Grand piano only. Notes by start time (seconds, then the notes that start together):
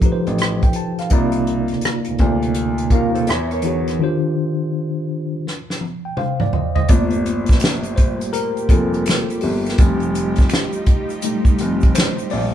0.02 A1
0.27 A1
1.12 C2
1.72 D2
2.08 D2
2.20 D2
2.91 D#2
3.29 E2
6.90 G1
8.69 F1
9.43 G1
9.79 F1
11.61 F1
12.33 A#1